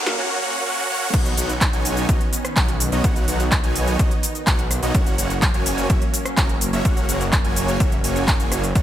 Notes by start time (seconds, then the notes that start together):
Already playing: F#1 F#3 A#3 C#4, riser
0.06 F#3 A#3 C#4 A#4, snare, closed hi-hat
0.18 A#3 C#4 F#4 C#5 F#5
0.42 A#3 C#4 F#4 C#5 F#5
0.66 A#3 C#4 F#4 C#5 F#5
0.90 A#3 C#4 F#4 C#5 F#5
1.13 B1 D#3 B3 C#4 D#4 F#4 C#5 F#5, kick, closed hi-hat, crash, shaker
1.26 closed hi-hat, shaker
1.37 B1 B3 D#4 F#4 C#5 F#5, open hi-hat, shaker
1.49 closed hi-hat, shaker
1.61 kick, clap, closed hi-hat, shaker
1.73 B1 B3 D#4 F#4 C#5 G#5, closed hi-hat
1.85 open hi-hat, shaker
1.97 closed hi-hat, shaker
2.09 B1 B3 D#4 F#4 C#5 D#5, kick, closed hi-hat, shaker
2.21 closed hi-hat
2.33 open hi-hat, shaker
2.45 cross-stick, closed hi-hat, shaker
2.56 B1 B3 D#4 F#4 C#5 F#5, kick, clap, closed hi-hat, shaker
2.68 closed hi-hat
2.80 open hi-hat, shaker
2.92 B1 B3 D#4 F#4 C#5 D#5, closed hi-hat, shaker
3.04 B1 B3 D#4 F#4 C#5 F#5, kick, closed hi-hat, shaker
3.16 closed hi-hat, shaker
3.28 B1 B3 D#4 F#4 C#5 F#5, open hi-hat, shaker
3.40 closed hi-hat, shaker
3.52 kick, clap, closed hi-hat, shaker
3.64 B1 B3 D#4 F#4 C#5 G#5, closed hi-hat
3.76 open hi-hat, shaker
3.87 closed hi-hat, shaker
3.99 B1 B3 D#4 F#4 C#5 D#5, kick, closed hi-hat, shaker
4.11 closed hi-hat
4.23 open hi-hat, shaker
4.35 closed hi-hat, shaker
4.47 B1 B3 D#4 F#4 C#5 F#5, kick, clap, closed hi-hat, shaker
4.59 closed hi-hat
4.71 cross-stick, open hi-hat, shaker
4.83 B1 B3 D#4 F#4 C#5 D#5, open hi-hat, shaker
4.94 F#1 F#3 A#3 C#4 F#4 C#5 F#5, kick, closed hi-hat, shaker
5.06 closed hi-hat, shaker
5.18 F#1 A#3 C#4 F#4 C#5 F#5, open hi-hat, shaker
5.30 closed hi-hat, shaker
5.42 kick, clap, closed hi-hat, shaker
5.54 F#1 A#3 C#4 F#4 C#5 G#5, closed hi-hat
5.66 open hi-hat, shaker
5.78 closed hi-hat, shaker
5.90 F#1 A#3 C#4 F#4 C#5 E5, kick, closed hi-hat, shaker
6.02 closed hi-hat
6.14 open hi-hat, shaker
6.26 cross-stick, closed hi-hat, shaker
6.37 F#1 A#3 C#4 F#4 C#5 A#5, kick, clap, closed hi-hat, shaker
6.49 closed hi-hat
6.61 open hi-hat, shaker
6.73 F#1 A#3 C#4 F#4 C#5 E5, closed hi-hat, shaker
6.85 F#1 A#3 C#4 F#4 C#5 F#5, kick, closed hi-hat, shaker
6.97 closed hi-hat, shaker
7.09 F#1 A#3 C#4 F#4 C#5 F#5, open hi-hat, shaker
7.21 closed hi-hat, shaker
7.33 kick, clap, closed hi-hat, shaker
7.45 F#1 A#3 C#4 F#4 C#5 G#5, closed hi-hat
7.56 open hi-hat, shaker
7.68 closed hi-hat, shaker
7.80 F#1 A#3 C#4 F#4 C#5 E5, kick, closed hi-hat, shaker
7.92 closed hi-hat
8.04 F#1 A#3 C#4 F#4 C#5 G#5, open hi-hat, shaker
8.16 closed hi-hat, shaker
8.28 kick, clap, closed hi-hat, shaker
8.40 F#1 A#3 C#4 F#4 C#5 G#5, closed hi-hat, shaker
8.52 cross-stick, open hi-hat, shaker
8.64 open hi-hat, shaker
8.75 B1 D#3 B3 C#4 D#4 F#4 C#5 F#5, kick, closed hi-hat, shaker